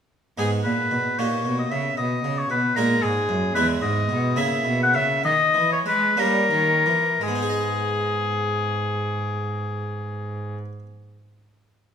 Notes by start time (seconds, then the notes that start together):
0.38 G#2 B3 D#4 G#4
0.64 A#2 B4
0.91 B2
1.18 A#2 A#3 D#4 G4 C#5
1.45 B2
1.59 D#5
1.71 C#3 E5
1.97 B2 D#5
2.24 C#3
2.38 C#5
2.50 B2 B4
2.76 A#2 G#3 D#4 G#4 A#4
3.02 G#2 G#4
3.29 F#2
3.55 E2 G#3 E4 G#4 B4
3.82 G#2 D#5
4.09 B2
4.36 C#3 A#3 E4 G#4 E5
4.65 B2
4.83 F#5
4.94 C#3 E5
5.24 D#3 D#5
5.54 E3
5.72 C#5
5.86 G#3 B4
6.17 G3 A#3 C#4 G4 A#4
6.51 D#3
6.86 E3
7.21 G#2 G#3 G#4
7.28 B3
7.35 D#4
7.42 G#4
7.49 D#5